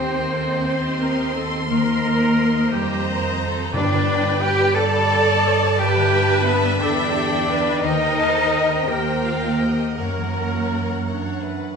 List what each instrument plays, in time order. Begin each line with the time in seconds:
Already playing: double bass section D#2, harp D#3 A#3 D#4 G4 G5, cello section C4, viola section G4, violin section A#4 D#5 G5, oboe C5, flute C5
0.13 harp G4
0.30 viola section A#3, violin section A4
0.48 harp D#5
0.65 violin section G4 D#5 C6, viola section C5, harp G5
0.99 violin section G4, viola section A#4, harp G5
1.18 harp D#5
1.33 viola section A4, violin section C5
1.53 harp G4
1.68 harp D#3, cello section A#3, viola section A#4, oboe A#4, flute A#4, violin section D#5
1.87 harp A#3
2.05 harp D#4
2.22 harp G4
2.56 harp D#5
2.71 double bass section F2, cello section G3, oboe G4, flute G4, violin section A#4 A#5, viola section C5, harp G5
3.07 violin section A#4, harp G5
3.24 harp D#5
3.43 violin section A4
3.58 harp G4
3.73 timpani G2, double bass section G2, harp G2, cello section D4, viola section B4, violin section B4 D5 G5, oboe D5, flute D5
3.92 harp D3
4.08 harp D4
4.24 harp G4
4.41 cello section G4, harp B4, flute G5, oboe G5
4.60 harp D5
4.75 cello section A4, viola section D5, violin section D5 A5, harp G5, oboe A5, flute A5
4.93 harp B5
5.11 harp G5
5.28 harp D5
5.46 harp B4
5.62 harp G4
5.77 harp G2, cello section G4, viola section B4, violin section B4 E5, flute G5, oboe G5
5.96 harp D3
6.12 harp D4
6.29 harp G4
6.46 cello section B3, oboe B4, flute B4, harp B4
6.64 harp D5
6.80 double bass section E2, cello section D4, viola section A4, violin section B4 G5, flute D5, oboe D5, harp G5
6.98 harp B5
7.14 viola section G4, violin section A4, harp G5
7.32 harp D5
7.48 viola section B4, harp B4, violin section B4
7.66 harp G4
7.82 double bass section D#2, harp D#3, cello section D#4, viola section A#4, violin section C5 D#5 G5, flute D#5, oboe D#5
8.19 harp D#4, violin section A5
8.36 harp G4
8.53 violin section G5
8.71 harp D#5
8.88 double bass section D#2, cello section A#3, viola section G4, flute A#4, oboe A#4, violin section G5, harp G5
9.07 harp A#5
9.24 viola section F4, violin section F5, harp G5
9.43 harp D#5
9.60 viola section G4, violin section D#5
9.80 harp G4
9.97 harp F#2, double bass section F#2, cello section A#3, violin section A#4 C#5 F#5, viola section A#4, flute A#4, oboe A#4
10.17 harp E3
10.52 harp E4
10.71 harp F#4
10.89 harp C#5
11.07 clarinet D4, violin section C#5, harp E5
11.25 harp F#5
11.43 violin section B4, harp E5
11.62 harp C#5